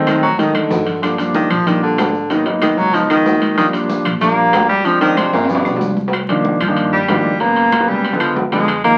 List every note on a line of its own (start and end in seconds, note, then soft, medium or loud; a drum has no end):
0.00 0.17 D2 medium
0.00 0.24 D#3 loud
0.00 0.24 F#3 medium
0.00 0.24 A3 medium
0.00 0.24 C4 loud
0.07 0.22 D#3 medium
0.07 high conga medium
0.07 high timbale medium
0.07 low timbale medium
0.07 claves medium
0.07 maracas medium
0.23 0.53 A1 loud
0.23 0.40 F#3 loud
0.23 high conga soft
0.23 maracas soft
0.38 0.83 D#3 medium
0.38 0.56 D#3 medium
0.38 0.83 F#3 medium
0.38 0.83 A3 medium
0.38 0.83 D#4 medium
0.38 high conga medium
0.38 high timbale medium
0.38 maracas medium
0.55 0.70 A1 medium
0.55 1.02 D3 medium
0.55 high conga medium
0.55 high timbale medium
0.55 claves medium
0.70 1.45 G1 medium
0.70 low conga loud
0.70 low timbale medium
0.70 maracas medium
0.86 low conga medium
0.86 high timbale medium
0.86 maracas soft
1.02 1.18 D3 medium
1.02 1.14 F3 medium
1.02 1.14 G3 medium
1.02 1.14 A#3 medium
1.02 1.14 D4 medium
1.02 high conga soft
1.02 high timbale medium
1.02 claves medium
1.02 maracas medium
1.18 1.52 F3 medium
1.18 1.52 G3 medium
1.18 1.52 A#3 medium
1.18 1.52 D4 medium
1.18 high conga soft
1.18 high timbale medium
1.18 maracas medium
1.34 1.52 D#3 medium
1.34 high conga medium
1.34 low timbale medium
1.34 maracas medium
1.50 1.95 A#1 loud
1.50 1.68 F3 loud
1.50 high conga soft
1.50 low conga medium
1.50 high timbale medium
1.50 claves medium
1.50 maracas soft
1.66 1.82 D#3 medium
1.66 2.11 F3 medium
1.66 2.11 G3 medium
1.66 2.11 A#3 medium
1.66 2.11 D4 medium
1.66 high conga soft
1.66 low conga medium
1.66 high timbale medium
1.66 maracas medium
1.83 2.32 D3 medium
1.83 high conga soft
1.98 2.72 G#1 medium
1.98 high conga medium
1.98 high timbale loud
1.98 low timbale loud
1.98 claves medium
1.98 maracas medium
2.15 maracas soft
2.30 2.46 D#3 medium
2.30 2.41 F#3 medium
2.30 2.42 A#3 medium
2.30 2.42 B3 medium
2.30 2.42 D#4 medium
2.30 high conga soft
2.30 high timbale medium
2.30 maracas medium
2.46 2.80 F#3 medium
2.46 2.80 A#3 medium
2.46 2.80 B3 medium
2.46 2.80 D#4 medium
2.46 high conga soft
2.46 high timbale medium
2.62 2.79 D#3 loud
2.62 high conga medium
2.62 high timbale loud
2.62 low timbale medium
2.62 claves medium
2.62 maracas medium
2.78 3.22 C#2 loud
2.78 2.95 F#3 loud
2.78 maracas soft
2.94 3.09 F3 loud
2.94 3.39 F3 medium
2.94 3.39 G#3 medium
2.94 3.39 B3 medium
2.94 3.39 D#4 medium
2.94 high conga soft
2.94 high timbale medium
2.94 maracas medium
3.10 3.55 D#3 loud
3.10 high conga soft
3.10 high timbale medium
3.10 claves medium
3.10 maracas medium
3.25 4.00 D#2 medium
3.25 high conga medium
3.25 low timbale loud
3.25 maracas medium
3.42 high conga medium
3.42 high timbale medium
3.42 maracas soft
3.57 3.67 D#3 loud
3.57 3.69 F3 medium
3.57 3.69 G3 medium
3.57 3.69 A#3 medium
3.57 3.69 D4 medium
3.57 high conga soft
3.57 high timbale medium
3.57 claves medium
3.57 maracas medium
3.73 4.07 F3 medium
3.73 4.07 G3 medium
3.73 4.07 A#3 medium
3.73 4.07 D4 medium
3.73 high conga soft
3.73 high timbale medium
3.73 maracas medium
3.89 high conga medium
3.89 low timbale medium
3.89 maracas medium
4.05 4.50 A#1 loud
4.05 high conga soft
4.05 low conga medium
4.05 high timbale medium
4.05 claves medium
4.05 maracas soft
4.21 4.66 F3 medium
4.21 4.66 G3 medium
4.21 4.66 A#3 loud
4.21 4.66 A#3 medium
4.21 4.66 D4 medium
4.21 high conga soft
4.21 low conga medium
4.21 high timbale medium
4.21 maracas medium
4.38 high conga soft
4.53 5.28 D2 medium
4.53 high conga medium
4.53 high timbale loud
4.53 low timbale loud
4.53 claves medium
4.53 maracas medium
4.69 4.87 G3 loud
4.69 maracas soft
4.85 4.96 F3 medium
4.85 5.01 F3 loud
4.85 4.96 G#3 medium
4.85 4.96 C4 medium
4.85 4.97 D4 medium
4.85 high conga soft
4.85 high timbale medium
4.85 maracas medium
5.01 5.19 D#3 loud
5.01 5.35 F3 medium
5.01 5.35 G#3 medium
5.01 5.35 C4 medium
5.01 5.35 D4 medium
5.01 high conga soft
5.01 high timbale medium
5.01 maracas medium
5.17 5.33 C3 medium
5.17 high conga medium
5.17 high timbale loud
5.17 low timbale medium
5.17 claves medium
5.17 maracas medium
5.33 5.63 G1 medium
5.33 5.51 A#2 loud
5.33 high conga soft
5.33 high timbale medium
5.33 maracas soft
5.44 high timbale medium
5.49 5.81 B2 loud
5.49 5.94 F3 medium
5.49 5.94 G3 medium
5.49 5.94 B3 medium
5.49 5.94 D4 medium
5.49 high conga soft
5.49 maracas medium
5.55 high timbale loud
5.65 5.80 B1 medium
5.65 high conga soft
5.65 low timbale medium
5.65 claves medium
5.65 maracas medium
5.76 low timbale medium
5.81 6.55 C2 medium
5.81 high conga medium
5.81 maracas medium
5.97 high conga medium
5.97 maracas soft
6.08 low timbale medium
6.13 high conga soft
6.13 high timbale medium
6.13 claves medium
6.29 6.57 D#3 medium
6.29 6.57 F3 medium
6.29 6.57 A#3 medium
6.29 6.57 D4 loud
6.29 high conga soft
6.29 high timbale medium
6.45 high conga medium
6.45 low timbale medium
6.60 7.05 G2 medium
6.60 6.90 F3 medium
6.60 high conga soft
6.60 low conga medium
6.60 high timbale medium
6.60 claves medium
6.68 6.96 D#3 medium
6.68 6.96 F3 medium
6.68 6.96 A#3 medium
6.68 6.96 D4 medium
6.77 high conga soft
6.77 high timbale medium
6.92 7.42 G3 loud
6.92 high conga soft
7.08 7.83 G#2 medium
7.08 7.31 D#3 medium
7.08 7.31 F3 medium
7.08 7.31 A#3 medium
7.08 7.31 D4 medium
7.08 high conga medium
7.08 high timbale loud
7.08 low timbale medium
7.08 claves medium
7.24 high conga medium
7.40 7.68 C#3 medium
7.40 7.69 F#3 medium
7.40 7.90 A#3 loud
7.40 7.69 A#3 medium
7.40 7.69 B3 medium
7.40 high conga soft
7.40 high timbale medium
7.56 high conga soft
7.56 high timbale medium
7.72 high conga medium
7.72 high timbale loud
7.72 low timbale medium
7.72 claves medium
7.80 8.03 C#3 medium
7.80 8.03 F#3 medium
7.80 8.03 A#3 medium
7.80 8.03 B3 medium
7.88 8.33 C#2 medium
7.88 8.20 G3 medium
7.88 high conga soft
8.04 high conga soft
8.04 high timbale medium
8.13 8.40 D3 medium
8.13 8.40 F3 medium
8.13 8.40 G#3 medium
8.13 8.40 B3 medium
8.20 8.35 F3 medium
8.20 high conga soft
8.20 high timbale medium
8.20 claves medium
8.36 8.98 F#2 medium
8.36 high conga medium
8.36 low timbale medium
8.52 8.68 D3 medium
8.52 8.68 F3 medium
8.52 8.68 G#3 medium
8.52 8.82 G#3 loud
8.52 8.68 B3 medium
8.52 high conga medium
8.52 high timbale medium
8.68 high conga soft
8.68 high timbale medium
8.68 claves medium
8.84 8.98 D#3 medium
8.84 8.98 F3 medium
8.84 8.98 G#3 medium
8.84 8.98 A#3 loud
8.84 8.98 A#3 medium
8.84 high conga soft
8.84 high timbale medium